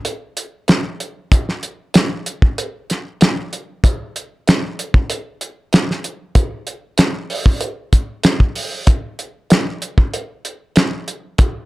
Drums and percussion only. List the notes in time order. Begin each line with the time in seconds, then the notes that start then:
0.05 closed hi-hat
0.37 closed hi-hat
0.68 snare, closed hi-hat
1.00 closed hi-hat
1.32 kick, closed hi-hat
1.49 snare
1.63 closed hi-hat
1.94 snare, closed hi-hat
2.26 closed hi-hat
2.42 kick
2.58 closed hi-hat
2.90 snare, closed hi-hat
3.21 snare, closed hi-hat
3.53 closed hi-hat
3.84 kick, closed hi-hat
4.16 closed hi-hat
4.47 snare, closed hi-hat
4.79 closed hi-hat
4.94 kick
5.10 closed hi-hat
5.41 closed hi-hat
5.73 snare, closed hi-hat
5.91 snare
6.04 closed hi-hat
6.35 kick, closed hi-hat
6.67 closed hi-hat
6.98 snare, closed hi-hat
7.30 open hi-hat
7.46 kick
7.61 closed hi-hat
7.93 kick, closed hi-hat
8.23 snare, closed hi-hat
8.40 kick
8.55 open hi-hat
8.87 kick, closed hi-hat
9.19 closed hi-hat
9.50 snare, closed hi-hat
9.82 closed hi-hat
9.98 kick
10.14 closed hi-hat
10.45 closed hi-hat
10.76 snare, closed hi-hat
11.08 closed hi-hat
11.38 kick, closed hi-hat